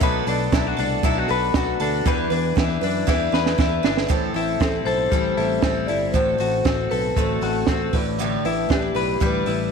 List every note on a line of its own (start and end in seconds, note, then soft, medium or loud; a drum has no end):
0.00 0.22 B1 loud
0.00 0.26 B2 medium
0.00 0.57 F#3 medium
0.00 0.27 F#3 medium
0.00 0.27 A3 medium
0.00 0.28 D4 medium
0.00 0.26 A4 loud
0.00 1.30 B4 medium
0.00 kick loud
0.00 closed hi-hat medium
0.27 0.48 B1 medium
0.27 0.52 A3 medium
0.27 0.53 D4 medium
0.27 0.52 A4 medium
0.27 open hi-hat medium
0.52 0.73 B1 loud
0.52 0.78 F#3 medium
0.52 0.78 A3 medium
0.52 0.78 D4 medium
0.52 0.67 E4 medium
0.52 0.76 A4 medium
0.52 kick loud
0.52 snare loud
0.52 closed hi-hat medium
0.67 1.04 F#4 soft
0.77 0.99 C2 medium
0.77 1.03 A3 medium
0.77 1.04 D4 medium
0.77 1.03 A4 medium
0.77 open hi-hat medium
1.03 1.24 B1 medium
1.03 1.29 B2 medium
1.03 1.29 F#3 medium
1.03 1.30 A3 medium
1.03 1.29 D4 medium
1.03 1.18 E4 medium
1.03 1.27 A4 loud
1.03 kick loud
1.03 closed hi-hat medium
1.18 1.55 F#4 medium
1.28 1.50 B1 loud
1.28 1.54 A3 soft
1.28 1.55 D4 medium
1.28 1.54 A4 medium
1.28 2.07 B4 medium
1.28 open hi-hat medium
1.54 1.75 B1 medium
1.54 1.80 F#3 medium
1.54 1.81 A3 medium
1.54 1.81 D4 medium
1.54 2.11 F#4 medium
1.54 1.79 A4 medium
1.54 kick loud
1.54 snare loud
1.54 closed hi-hat medium
1.80 2.01 D2 medium
1.80 2.06 D4 medium
1.80 2.06 A4 medium
1.80 open hi-hat medium
1.84 2.07 A3 soft
2.05 2.27 E2 loud
2.05 2.31 E3 medium
2.05 2.32 G3 medium
2.05 2.32 D4 medium
2.05 2.31 E4 loud
2.05 2.29 B4 medium
2.05 kick loud
2.05 closed hi-hat medium
2.30 2.52 E2 loud
2.30 2.56 D4 soft
2.30 2.57 E4 medium
2.30 2.56 B4 medium
2.30 open hi-hat medium
2.56 2.78 E2 loud
2.56 2.82 G3 medium
2.56 2.82 D4 medium
2.56 2.83 E4 medium
2.56 2.80 B4 medium
2.56 kick loud
2.56 snare loud
2.56 closed hi-hat medium
2.81 3.03 F#2 loud
2.81 3.08 E4 soft
2.81 3.07 B4 medium
2.81 open hi-hat medium
2.85 3.07 D4 soft
3.07 3.29 E2 loud
3.07 3.33 E3 medium
3.07 3.33 G3 medium
3.07 3.33 D4 medium
3.07 3.33 E4 loud
3.07 3.31 B4 loud
3.07 kick medium
3.07 snare medium
3.32 3.54 E2 medium
3.32 3.58 D4 soft
3.32 3.59 E4 medium
3.32 3.58 B4 medium
3.32 snare medium
3.46 snare medium
3.58 3.80 E2 medium
3.58 3.84 G3 medium
3.58 3.84 D4 medium
3.58 3.84 E4 medium
3.58 3.82 B4 medium
3.58 kick loud
3.58 snare medium
3.83 4.05 G1 medium
3.83 4.10 D4 medium
3.83 4.09 E4 medium
3.83 4.09 B4 medium
3.83 snare medium
3.97 snare medium
4.08 4.31 A1 medium
4.08 4.35 A2 medium
4.08 4.35 E3 medium
4.08 4.35 G3 medium
4.08 4.35 C4 medium
4.08 4.34 E4 medium
4.08 4.33 A4 medium
4.08 kick loud
4.08 closed hi-hat medium
4.34 4.56 A1 medium
4.34 4.59 G3 soft
4.34 4.60 C4 soft
4.34 4.61 E4 soft
4.34 4.60 A4 medium
4.34 open hi-hat medium
4.60 4.82 A1 medium
4.60 4.86 G3 medium
4.60 4.87 C4 medium
4.60 4.86 E4 medium
4.60 4.72 A4 medium
4.60 4.85 A4 medium
4.60 kick loud
4.60 snare loud
4.60 closed hi-hat medium
4.85 5.07 B1 medium
4.85 5.12 G3 soft
4.85 5.12 C4 soft
4.85 5.12 E4 soft
4.85 5.12 A4 soft
4.85 5.84 C5 loud
4.85 open hi-hat medium
5.12 5.33 A1 medium
5.12 5.37 A2 medium
5.12 5.38 E3 medium
5.12 5.38 G3 medium
5.12 5.38 C4 medium
5.12 5.37 E4 medium
5.12 5.36 A4 medium
5.12 kick loud
5.12 closed hi-hat medium
5.37 5.59 A1 medium
5.37 5.61 G3 soft
5.37 5.62 C4 soft
5.37 5.63 E4 soft
5.37 5.63 A4 medium
5.37 open hi-hat medium
5.62 5.84 A1 medium
5.62 5.88 G3 medium
5.62 5.89 C4 medium
5.62 5.88 E4 medium
5.62 5.87 A4 medium
5.62 kick loud
5.62 snare loud
5.62 closed hi-hat medium
5.86 6.10 G1 medium
5.86 6.14 C4 soft
5.86 6.15 E4 soft
5.86 6.14 A4 medium
5.86 5.98 D5 loud
5.86 open hi-hat medium
5.92 6.14 G3 soft
6.12 6.35 A1 loud
6.12 6.39 A2 medium
6.12 6.40 D3 medium
6.12 6.40 A3 medium
6.12 6.40 C4 medium
6.12 6.38 F#4 medium
6.12 6.37 A4 medium
6.12 6.86 C5 medium
6.12 kick loud
6.12 closed hi-hat medium
6.38 6.61 A1 medium
6.38 6.63 A3 soft
6.38 6.65 C4 soft
6.38 6.65 F#4 soft
6.38 6.65 A4 medium
6.38 open hi-hat medium
6.65 6.86 A1 medium
6.65 6.91 A3 medium
6.65 6.91 C4 medium
6.65 6.92 F#4 medium
6.65 6.90 A4 medium
6.65 kick loud
6.65 snare loud
6.65 closed hi-hat medium
6.90 7.12 B1 medium
6.90 7.17 C4 soft
6.90 7.17 F#4 soft
6.90 7.17 A4 medium
6.90 7.17 B4 medium
6.90 open hi-hat medium
6.95 7.16 A3 soft
7.15 7.37 A1 medium
7.15 7.42 A2 medium
7.15 7.43 D3 medium
7.15 7.43 A3 medium
7.15 7.43 C4 medium
7.15 7.41 F#4 medium
7.15 7.88 A4 medium
7.15 kick loud
7.15 closed hi-hat medium
7.20 7.40 A4 medium
7.41 7.63 A1 loud
7.41 7.67 A3 soft
7.41 7.68 C4 soft
7.41 7.68 F#4 soft
7.41 7.67 A4 soft
7.41 open hi-hat medium
7.67 7.89 A1 medium
7.67 7.93 A3 medium
7.67 7.94 C4 medium
7.67 7.94 F#4 medium
7.67 kick loud
7.67 snare loud
7.67 closed hi-hat medium
7.72 7.92 A4 medium
7.93 8.35 A1 medium
7.93 8.19 A2 medium
7.93 8.19 G3 soft
7.93 8.20 D4 soft
7.93 8.20 E4 medium
7.93 8.19 B4 medium
7.93 kick loud
7.93 open hi-hat medium
8.19 8.45 A2 medium
8.19 8.45 D3 medium
8.19 8.45 G3 medium
8.19 8.45 D4 medium
8.19 8.45 E4 medium
8.19 8.44 B4 loud
8.19 closed hi-hat medium
8.45 8.66 A1 medium
8.45 8.67 G3 soft
8.45 8.69 D4 medium
8.45 8.70 E4 medium
8.45 8.70 B4 medium
8.45 open hi-hat medium
8.69 8.91 A1 loud
8.69 8.95 G3 medium
8.69 8.96 D4 medium
8.69 8.95 E4 medium
8.69 9.23 G4 medium
8.69 8.93 B4 medium
8.69 kick loud
8.69 snare loud
8.69 closed hi-hat medium
8.95 9.16 B1 medium
8.95 9.20 G3 soft
8.95 9.21 D4 soft
8.95 9.21 E4 soft
8.95 9.21 B4 soft
8.95 open hi-hat medium
9.20 9.42 A1 loud
9.20 9.46 A2 medium
9.20 9.47 D3 medium
9.20 9.47 G3 medium
9.20 9.47 D4 medium
9.20 9.46 E4 medium
9.20 9.72 B4 medium
9.20 9.45 B4 medium
9.20 kick loud
9.20 closed hi-hat medium
9.46 9.68 A1 loud
9.46 9.70 G3 soft
9.46 9.71 D4 soft
9.46 9.72 E4 soft
9.46 9.72 B4 soft
9.46 open hi-hat medium